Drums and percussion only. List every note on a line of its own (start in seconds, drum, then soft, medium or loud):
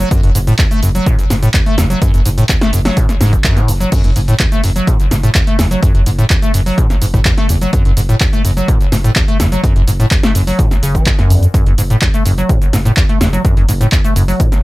0.00 shaker soft
0.11 kick loud
0.11 closed hi-hat medium
0.11 shaker soft
0.23 closed hi-hat soft
0.35 open hi-hat loud
0.35 shaker medium
0.47 closed hi-hat soft
0.47 shaker soft
0.59 kick loud
0.59 clap loud
0.59 closed hi-hat medium
0.59 shaker medium
0.71 closed hi-hat soft
0.71 shaker soft
0.83 open hi-hat loud
0.83 shaker medium
0.95 closed hi-hat soft
0.95 shaker soft
1.06 kick loud
1.06 closed hi-hat medium
1.06 shaker soft
1.19 closed hi-hat soft
1.19 shaker soft
1.30 snare medium
1.30 open hi-hat medium
1.30 shaker medium
1.43 closed hi-hat soft
1.43 shaker soft
1.54 kick loud
1.54 clap loud
1.54 closed hi-hat medium
1.54 shaker medium
1.66 closed hi-hat soft
1.78 snare medium
1.78 open hi-hat loud
1.78 shaker medium
1.90 closed hi-hat soft
1.90 shaker soft
2.02 kick loud
2.02 closed hi-hat medium
2.02 shaker soft
2.14 closed hi-hat soft
2.14 shaker soft
2.25 open hi-hat loud
2.25 shaker medium
2.38 closed hi-hat soft
2.38 shaker soft
2.49 kick loud
2.49 clap loud
2.49 closed hi-hat medium
2.49 shaker soft
2.61 snare medium
2.61 closed hi-hat soft
2.61 shaker soft
2.73 open hi-hat loud
2.73 shaker medium
2.85 snare medium
2.85 open hi-hat medium
2.85 shaker soft
2.97 kick loud
2.97 closed hi-hat medium
2.97 shaker soft
3.09 snare soft
3.09 closed hi-hat soft
3.09 shaker soft
3.21 snare medium
3.21 open hi-hat loud
3.21 shaker medium
3.33 kick medium
3.33 closed hi-hat soft
3.33 shaker soft
3.44 kick loud
3.44 clap loud
3.44 closed hi-hat medium
3.44 shaker medium
3.57 snare soft
3.57 closed hi-hat soft
3.57 shaker soft
3.68 open hi-hat loud
3.68 shaker medium
3.80 closed hi-hat soft
3.80 shaker soft
3.92 kick loud
3.92 closed hi-hat medium
3.92 crash medium
3.92 shaker soft
4.04 closed hi-hat soft
4.16 open hi-hat loud
4.16 shaker medium
4.28 closed hi-hat soft
4.28 shaker soft
4.39 kick loud
4.39 clap loud
4.39 closed hi-hat medium
4.39 shaker soft
4.52 closed hi-hat soft
4.52 shaker soft
4.64 open hi-hat loud
4.64 shaker medium
4.76 closed hi-hat soft
4.76 shaker soft
4.87 kick loud
4.87 closed hi-hat medium
4.87 shaker soft
5.00 closed hi-hat soft
5.00 shaker soft
5.11 snare medium
5.11 open hi-hat loud
5.11 shaker medium
5.23 closed hi-hat soft
5.23 shaker soft
5.35 kick loud
5.35 clap loud
5.35 closed hi-hat medium
5.35 shaker soft
5.47 closed hi-hat soft
5.59 snare medium
5.59 open hi-hat loud
5.59 shaker medium
5.71 closed hi-hat soft
5.71 shaker soft
5.83 kick loud
5.83 closed hi-hat medium
5.83 shaker soft
5.95 closed hi-hat soft
6.06 open hi-hat loud
6.06 shaker medium
6.19 closed hi-hat soft
6.19 shaker soft
6.30 kick loud
6.30 clap loud
6.30 closed hi-hat medium
6.30 shaker soft
6.42 closed hi-hat soft
6.42 shaker soft
6.54 open hi-hat loud
6.54 shaker medium
6.66 open hi-hat medium
6.66 shaker soft
6.78 kick loud
6.78 closed hi-hat medium
6.78 shaker soft
6.90 snare soft
6.90 closed hi-hat soft
6.90 shaker soft
7.02 open hi-hat loud
7.02 shaker medium
7.14 kick medium
7.14 closed hi-hat soft
7.14 shaker soft
7.25 kick loud
7.25 clap loud
7.25 closed hi-hat medium
7.25 shaker soft
7.38 snare soft
7.38 closed hi-hat soft
7.49 open hi-hat loud
7.49 shaker medium
7.61 closed hi-hat soft
7.61 shaker soft
7.73 kick loud
7.73 closed hi-hat medium
7.73 shaker soft
7.85 closed hi-hat soft
7.97 open hi-hat loud
7.97 shaker medium
8.09 closed hi-hat soft
8.09 shaker soft
8.20 kick loud
8.20 clap loud
8.20 closed hi-hat medium
8.20 shaker soft
8.33 closed hi-hat soft
8.33 shaker soft
8.45 open hi-hat loud
8.45 shaker medium
8.57 closed hi-hat soft
8.57 shaker soft
8.68 kick loud
8.68 closed hi-hat medium
8.68 shaker soft
8.81 closed hi-hat soft
8.81 shaker soft
8.92 snare medium
8.92 open hi-hat loud
8.92 shaker medium
9.04 closed hi-hat soft
9.04 shaker soft
9.16 kick loud
9.16 clap loud
9.16 closed hi-hat medium
9.16 shaker soft
9.28 closed hi-hat soft
9.40 snare medium
9.40 open hi-hat loud
9.40 shaker medium
9.52 closed hi-hat soft
9.52 shaker soft
9.64 kick loud
9.64 closed hi-hat medium
9.64 shaker soft
9.76 closed hi-hat soft
9.88 open hi-hat loud
9.88 shaker medium
10.00 closed hi-hat soft
10.00 shaker soft
10.11 kick loud
10.11 clap loud
10.11 closed hi-hat medium
10.11 shaker soft
10.23 snare medium
10.23 closed hi-hat soft
10.23 shaker soft
10.35 open hi-hat loud
10.35 shaker medium
10.47 open hi-hat medium
10.47 shaker soft
10.59 kick loud
10.59 closed hi-hat medium
10.59 shaker soft
10.71 snare soft
10.71 closed hi-hat soft
10.71 shaker soft
10.83 open hi-hat loud
10.83 shaker medium
10.95 kick medium
10.95 closed hi-hat soft
10.95 shaker soft
11.06 kick loud
11.06 clap loud
11.06 closed hi-hat medium
11.06 shaker soft
11.19 snare soft
11.19 closed hi-hat soft
11.30 open hi-hat loud
11.30 shaker medium
11.43 closed hi-hat soft
11.43 shaker soft
11.54 kick loud
11.54 closed hi-hat medium
11.54 shaker soft
11.66 closed hi-hat soft
11.78 open hi-hat loud
11.78 shaker medium
11.90 closed hi-hat soft
11.90 shaker soft
12.02 kick loud
12.02 clap loud
12.02 closed hi-hat medium
12.02 shaker soft
12.14 closed hi-hat soft
12.14 shaker soft
12.26 open hi-hat loud
12.26 shaker medium
12.38 closed hi-hat soft
12.38 shaker soft
12.49 kick loud
12.49 closed hi-hat medium
12.49 shaker soft
12.62 closed hi-hat soft
12.62 shaker soft
12.73 snare medium
12.73 open hi-hat loud
12.73 shaker medium
12.85 closed hi-hat soft
12.85 shaker soft
12.97 kick loud
12.97 clap loud
12.97 closed hi-hat medium
12.97 shaker soft
13.09 closed hi-hat soft
13.21 snare medium
13.21 open hi-hat loud
13.21 shaker medium
13.33 closed hi-hat soft
13.33 shaker soft
13.45 kick loud
13.45 closed hi-hat medium
13.45 shaker soft
13.57 closed hi-hat soft
13.69 open hi-hat loud
13.69 shaker medium
13.81 closed hi-hat soft
13.81 shaker soft
13.92 kick loud
13.92 clap loud
13.92 closed hi-hat medium
13.92 shaker soft
14.04 closed hi-hat soft
14.04 shaker soft
14.16 open hi-hat loud
14.16 shaker medium
14.28 open hi-hat medium
14.28 shaker soft
14.40 kick loud
14.40 closed hi-hat medium
14.40 shaker soft
14.52 snare soft
14.52 closed hi-hat soft
14.52 shaker soft